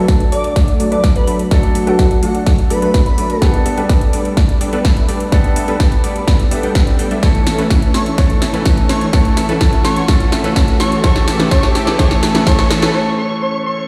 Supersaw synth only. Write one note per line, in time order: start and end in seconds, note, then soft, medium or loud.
0.08 0.29 F#3 medium
0.08 0.29 A3 medium
0.08 0.29 D4 medium
0.08 0.29 A4 medium
0.08 0.29 B4 medium
0.32 0.53 F#3 medium
0.32 0.53 A3 medium
0.32 0.53 D4 medium
0.32 0.53 A4 medium
0.32 0.53 D5 medium
0.56 0.77 F#3 medium
0.56 0.77 A3 medium
0.56 0.77 D4 medium
0.56 0.77 A4 medium
0.56 0.77 D5 medium
0.80 0.89 F#3 loud
0.80 0.89 A3 medium
0.80 0.89 D4 medium
0.80 0.89 A4 medium
0.80 0.89 D5 loud
0.92 1.02 F#3 medium
0.92 1.02 A3 medium
0.92 1.02 D4 medium
0.92 1.02 A4 medium
0.92 1.02 B4 loud
1.03 1.25 F#3 medium
1.03 1.25 A3 medium
1.03 1.25 D4 medium
1.03 1.25 A4 medium
1.03 1.25 E5 medium
1.27 1.48 F#3 medium
1.27 1.48 A3 medium
1.27 1.48 D4 medium
1.27 1.48 A4 medium
1.27 1.48 D5 loud
1.51 1.72 F#3 medium
1.51 1.72 A3 medium
1.51 1.72 D4 medium
1.51 1.72 A4 medium
1.51 1.72 D5 loud
1.75 1.84 F#3 medium
1.75 1.84 A3 medium
1.75 1.84 D4 medium
1.75 1.84 A4 medium
1.75 1.84 E5 medium
1.87 1.96 F#3 medium
1.87 1.96 A3 medium
1.87 1.96 D4 medium
1.87 1.96 A4 medium
1.87 1.96 B4 medium
1.99 2.20 F#3 medium
1.99 2.20 A3 medium
1.99 2.20 D4 medium
1.99 2.20 A4 medium
1.99 2.20 B4 medium
2.23 2.44 F#3 medium
2.23 2.44 A3 medium
2.23 2.44 D4 medium
2.23 2.44 A4 medium
2.23 2.44 D5 medium
2.46 2.68 F#3 medium
2.46 2.68 A3 medium
2.46 2.68 D4 medium
2.46 2.68 A4 medium
2.46 2.68 D5 medium
2.70 2.79 F#3 medium
2.70 2.79 A3 medium
2.70 2.79 D4 medium
2.70 2.79 A4 medium
2.70 2.79 D5 loud
2.82 2.92 F#3 medium
2.82 2.92 A3 medium
2.82 2.92 D4 medium
2.82 2.92 A4 medium
2.82 2.92 B4 loud
2.94 3.15 F#3 medium
2.94 3.15 A3 medium
2.94 3.15 E5 medium
3.18 3.38 F#3 medium
3.18 3.38 A3 medium
3.18 3.38 D4 medium
3.18 3.38 A4 medium
3.18 3.38 D5 medium
3.42 3.63 G3 medium
3.42 3.63 B3 medium
3.42 3.63 D4 medium
3.42 3.63 A4 medium
3.42 3.63 D5 loud
3.66 3.75 G3 medium
3.66 3.75 B3 medium
3.66 3.75 D4 medium
3.66 3.75 A4 medium
3.66 3.75 E5 medium
3.78 3.87 G3 medium
3.78 3.87 B3 medium
3.78 3.87 D4 medium
3.78 3.87 A4 medium
3.78 3.87 B4 medium
3.89 4.10 G3 medium
3.89 4.10 B3 medium
3.89 4.10 D4 medium
3.89 4.10 A4 medium
3.89 4.10 B4 medium
4.13 4.34 G3 medium
4.13 4.34 B3 medium
4.13 4.34 D4 medium
4.13 4.34 A4 medium
4.13 4.34 D5 medium
4.37 4.58 G3 medium
4.37 4.58 B3 medium
4.37 4.58 D4 medium
4.37 4.58 A4 medium
4.37 4.58 D5 medium
4.61 4.70 G3 loud
4.61 4.70 B3 medium
4.61 4.70 D4 medium
4.61 4.70 A4 medium
4.61 4.70 D5 loud
4.73 4.83 G3 medium
4.73 4.83 B3 medium
4.73 4.83 D4 medium
4.73 4.83 A4 medium
4.73 4.83 B4 loud
4.84 5.06 G3 medium
4.84 5.06 B3 medium
4.84 5.06 D4 medium
4.84 5.06 A4 medium
4.84 5.06 E5 medium
5.08 5.29 G3 medium
5.08 5.29 B3 medium
5.08 5.29 D4 medium
5.08 5.29 A4 medium
5.08 5.29 D5 loud
5.32 5.53 G3 medium
5.32 5.53 B3 medium
5.32 5.53 D4 medium
5.32 5.53 A4 medium
5.32 5.53 D5 loud
5.56 5.65 G3 medium
5.56 5.65 B3 medium
5.56 5.65 D4 medium
5.56 5.65 A4 medium
5.56 5.65 E5 medium
5.68 5.77 G3 medium
5.68 5.77 B3 medium
5.68 5.77 D4 medium
5.68 5.77 A4 medium
5.68 5.77 B4 medium
5.80 6.01 G3 medium
5.80 6.01 B3 medium
5.80 6.01 D4 medium
5.80 6.01 A4 medium
5.80 6.01 B4 medium
6.04 6.25 G3 medium
6.04 6.25 B3 medium
6.04 6.25 D4 medium
6.04 6.25 A4 medium
6.04 6.25 D5 medium
6.27 6.48 G3 medium
6.27 6.49 B3 medium
6.27 6.49 D4 medium
6.27 6.49 A4 medium
6.27 6.48 D5 medium
6.51 6.60 G3 medium
6.51 6.60 B3 medium
6.51 6.60 D4 medium
6.51 6.60 A4 medium
6.51 6.60 E5 loud
6.63 6.72 G3 medium
6.63 6.72 B3 medium
6.63 6.72 D4 medium
6.63 6.72 A4 medium
6.63 6.72 G5 medium
6.75 6.95 G3 loud
6.75 6.95 B3 medium
6.75 6.95 D4 medium
6.75 6.95 A4 medium
6.75 6.95 G5 loud
6.99 7.08 G3 medium
6.99 7.08 B3 medium
6.99 7.08 D4 medium
6.99 7.08 A4 medium
6.99 7.08 G5 loud
7.11 7.21 G3 medium
7.11 7.21 B3 medium
7.11 7.21 D4 medium
7.11 7.21 A4 medium
7.11 7.21 E5 medium
7.23 7.44 E3 medium
7.23 7.44 A3 medium
7.23 7.44 C#4 medium
7.23 7.44 A4 medium
7.23 7.44 C#5 loud
7.47 7.56 E3 medium
7.47 7.56 A3 medium
7.47 7.56 C#4 medium
7.47 7.56 A4 medium
7.47 7.56 E5 medium
7.59 7.68 E3 medium
7.59 7.68 A3 medium
7.59 7.68 C#4 medium
7.59 7.68 A4 medium
7.59 7.68 B4 medium
7.70 7.91 E3 medium
7.70 7.91 A3 medium
7.70 7.91 C#4 medium
7.70 7.91 A4 medium
7.70 7.91 B4 medium
7.94 8.15 E3 medium
7.94 8.15 A3 medium
7.94 8.15 C#4 medium
7.94 8.15 A4 medium
7.94 8.15 C#5 medium
8.18 8.39 E3 medium
8.18 8.39 A3 medium
8.18 8.39 C#4 medium
8.18 8.39 A4 medium
8.18 8.39 C#5 medium
8.42 8.51 E3 medium
8.42 8.51 A3 medium
8.42 8.51 C#4 medium
8.42 8.51 A4 medium
8.42 8.51 E5 medium
8.54 8.63 E3 medium
8.54 8.63 A3 medium
8.54 8.63 C#4 medium
8.54 8.63 A4 medium
8.54 8.63 B4 medium
8.66 8.87 E3 medium
8.66 8.87 A3 medium
8.66 8.87 C#4 medium
8.66 8.87 A4 medium
8.66 8.87 B4 medium
8.89 9.10 E3 medium
8.89 9.10 A3 medium
8.89 9.10 C#4 medium
8.89 9.10 A4 medium
8.89 9.10 C#5 medium
9.13 9.34 E3 medium
9.13 9.34 A3 medium
9.13 9.34 C#4 medium
9.13 9.34 A4 medium
9.13 9.34 C#5 loud
9.37 9.46 E3 medium
9.37 9.46 A3 medium
9.37 9.46 C#4 medium
9.37 9.46 A4 medium
9.37 9.46 E5 medium
9.49 9.58 E3 medium
9.49 9.58 A3 medium
9.49 9.58 C#4 medium
9.49 9.58 A4 medium
9.49 9.58 B4 medium
9.61 9.82 E3 medium
9.61 9.82 A3 medium
9.61 9.82 C#4 medium
9.61 9.82 A4 medium
9.61 9.82 B4 medium
9.85 10.06 E3 medium
9.85 10.06 A3 medium
9.85 10.06 C#4 medium
9.85 10.06 A4 medium
9.85 10.06 C#5 medium
10.08 10.29 E3 medium
10.08 10.29 A3 medium
10.08 10.29 C#4 medium
10.08 10.29 A4 medium
10.08 10.29 C#5 loud
10.32 10.41 E3 medium
10.32 10.41 A3 medium
10.32 10.41 C#4 medium
10.32 10.41 A4 medium
10.32 10.41 E5 medium
10.44 10.53 E3 medium
10.44 10.53 A3 medium
10.44 10.53 C#4 medium
10.44 10.53 A4 medium
10.44 10.53 B4 medium
10.56 10.77 E3 medium
10.56 10.77 A3 medium
10.56 10.77 C#4 medium
10.56 10.77 A4 medium
10.56 10.77 B4 medium
10.80 11.01 E3 medium
10.80 11.01 A3 medium
10.80 11.01 C#4 medium
10.80 11.01 A4 medium
10.80 11.01 C#5 medium
11.04 11.25 E3 medium
11.04 11.25 A3 medium
11.04 11.25 C#4 medium
11.04 11.25 A4 medium
11.04 11.25 C#5 loud
11.28 11.37 E3 medium
11.28 11.37 A3 medium
11.28 11.37 C#4 medium
11.28 11.37 A4 medium
11.28 11.37 E5 medium
11.39 11.49 E3 medium
11.39 11.49 A3 medium
11.39 11.49 C#4 medium
11.39 11.49 A4 medium
11.39 11.49 B4 medium
11.51 11.72 E3 medium
11.51 11.72 A3 medium
11.51 11.72 C#4 medium
11.51 11.72 A4 medium
11.51 11.72 C#5 loud
11.75 11.84 E3 medium
11.75 11.84 A3 medium
11.75 11.84 C#4 medium
11.75 11.84 A4 medium
11.75 11.84 E5 medium
11.87 11.96 E3 medium
11.87 11.96 A3 medium
11.87 11.96 C#4 medium
11.87 11.96 A4 medium
11.87 11.96 B4 medium
11.99 12.20 E3 loud
11.99 12.20 A3 medium
11.99 12.20 C#4 medium
11.99 12.20 A4 medium
11.99 12.20 C#5 loud
12.23 12.32 E3 medium
12.23 12.32 A3 medium
12.23 12.32 C#4 medium
12.23 12.32 A4 medium
12.23 12.32 E5 medium
12.35 12.44 E3 medium
12.35 12.44 A3 medium
12.35 12.44 C#4 medium
12.35 12.44 A4 medium
12.35 12.44 B4 medium
12.47 12.68 E3 medium
12.70 12.80 E3 medium
12.70 12.80 A3 medium
12.70 12.80 C#4 medium
12.70 12.80 A4 medium
12.70 12.80 E5 medium
12.82 12.91 E3 medium
12.82 12.91 A3 medium
12.82 12.91 C#4 medium
12.82 12.91 A4 medium
12.82 12.91 B4 medium